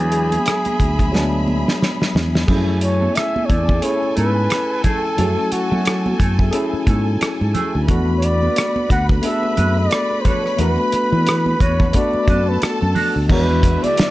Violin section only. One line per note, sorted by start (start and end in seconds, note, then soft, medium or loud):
0.00 2.45 G#4 medium
0.00 2.45 E5 medium
0.00 2.45 B5 medium
2.49 7.85 A4 medium
2.49 7.85 G#5 medium
7.89 12.24 B4 medium
7.89 12.25 B5 medium
12.27 13.27 A4 medium
12.27 13.27 A5 medium
13.29 14.11 D4 medium
13.29 14.11 B4 medium
13.29 14.11 E5 medium